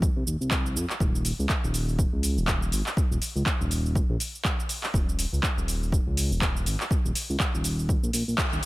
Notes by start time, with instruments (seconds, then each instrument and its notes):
0.02 kick, cabasa
0.16 analog synth bass C2
0.27 analog synth bass D#1, cabasa
0.41 analog synth bass C2, cabasa
0.51 kick, clap, cabasa
0.66 cabasa
0.76 analog synth bass F2, cabasa
0.90 clap, cabasa
1.00 analog synth bass D#1, kick, cabasa
1.15 cabasa
1.25 open hi-hat, cabasa
1.39 analog synth bass C#2, cabasa
1.49 kick, clap, cabasa
1.64 analog synth bass D#1, cabasa
1.74 open hi-hat, cabasa
1.89 cabasa
1.99 kick, cabasa
2.13 analog synth bass C#2
2.23 open hi-hat, cabasa
2.37 analog synth bass D#1, cabasa
2.48 kick, clap, cabasa
2.62 cabasa
2.72 analog synth bass G#1, open hi-hat, cabasa
2.86 clap, cabasa
2.97 kick, cabasa
3.11 analog synth bass D#1, cabasa
3.22 open hi-hat, cabasa
3.35 analog synth bass C#2, cabasa
3.46 kick, clap, cabasa
3.60 analog synth bass D#1, cabasa
3.71 open hi-hat, cabasa
3.86 cabasa
3.95 kick, cabasa
4.09 analog synth bass A#1
4.20 open hi-hat, cabasa
4.35 cabasa
4.45 kick, clap, cabasa
4.60 cabasa
4.69 open hi-hat, cabasa
4.84 clap, cabasa
4.94 analog synth bass D#1, kick, cabasa
5.09 cabasa
5.19 open hi-hat, cabasa
5.33 analog synth bass C#2, cabasa
5.43 kick, clap, cabasa
5.57 analog synth bass D#1, cabasa
5.68 open hi-hat, cabasa
5.83 cabasa
5.92 kick, cabasa
6.07 analog synth bass C#2
6.17 open hi-hat, cabasa
6.31 analog synth bass D#1, cabasa
6.42 kick, clap, cabasa
6.57 cabasa
6.66 analog synth bass G#1, open hi-hat, cabasa
6.80 clap, cabasa
6.91 kick, cabasa
7.05 analog synth bass D#1, cabasa
7.15 open hi-hat, cabasa
7.30 analog synth bass C#2, cabasa
7.40 kick, clap, cabasa
7.54 analog synth bass D#1, cabasa
7.64 open hi-hat, cabasa
7.79 cabasa
7.89 kick, cabasa
8.03 analog synth bass A#1, cabasa
8.13 analog synth bass A#1, open hi-hat, cabasa
8.28 analog synth bass A#1, cabasa
8.38 kick, clap, cabasa
8.53 analog synth bass D#1, cabasa